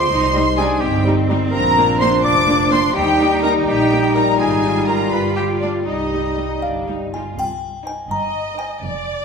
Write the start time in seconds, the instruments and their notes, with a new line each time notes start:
Already playing: french horn section F4, cor anglais C5, violin section C6, flute section C6
0.10 double bass section C2, french horn section G3 D#4, cello section D#4
0.33 bassoon G3, viola section G3 D#4, cello section D#4, clarinet D#4
0.57 bassoon G3, viola section G3 D#4, cello section D4, clarinet D#4, cor anglais G#4, violin section G#5, flute section G#5
0.81 double bass section G1, cello section C4, cor anglais G4, violin section G5, flute section G5
1.05 bassoon G3, viola section G3 D#4, clarinet D#4
1.28 bassoon G3, viola section G3 D#4, clarinet D#4
1.51 double bass section A#1, french horn section F3 D4, bassoon F3, clarinet D4, cor anglais A#4, violin section A#5, flute section A#5
1.78 viola section A#3 D4
1.99 viola section A#3 D4, cor anglais C5, violin section C6, flute section C6
2.24 double bass section F1, cello section D4, cor anglais D5, violin section D6, flute section D6
2.47 viola section A#3 D4
2.71 viola section A#3 D4, cor anglais C5, violin section C6, flute section C6
2.94 double bass section D#2, bassoon G3, french horn section G3 D#4, cello section D#4, clarinet D#4, cor anglais G4, violin section G5, flute section G5
3.20 viola section A#3 D#4
3.42 viola section A#3 D#4, cor anglais A#4, violin section A#5, flute section A#5
3.67 double bass section A#1, cor anglais G4, violin section G5, flute section G5
3.92 viola section A#3 D#4
4.14 viola section A#3 D#4, cor anglais A#4, violin section A#5, flute section A#5
4.38 double bass section G#1, cello section F4, cor anglais G#4, violin section G#5, flute section G#5
4.64 viola section G3 D#4
4.87 viola section G3 D#4, cor anglais A#4, violin section A#5, flute section A#5
5.11 double bass section G1, french horn section F4, clarinet F4, cor anglais B4, violin section B5, flute section B5
5.35 viola section G3 F4, cor anglais G4, violin section G5, flute section G5
5.61 viola section G3 F4, cor anglais D4, violin section D5, flute section D5
5.86 double bass section C2, bassoon G3, french horn section G3 D#4, cor anglais D#4, cello section D#4, clarinet D#4, violin section D#5, flute section D#5
6.13 viola section G3 D#4
6.38 viola section G3 D#4
6.62 double bass section G1, cello section D4, music box F5
6.87 viola section G3 D#4, cello section D#4
7.13 viola section G3 D#4, cello section F4, music box G#5
7.37 double bass section C2, cello section C3, music box G5, triangle
7.86 violin section D#4 C5 G5, music box G#5
8.10 double bass section G1, cello section G2, viola section D#5, music box A#5
8.58 violin section D#4 C5 G5, music box G#5
8.82 double bass section F1, cello section F2, viola section D5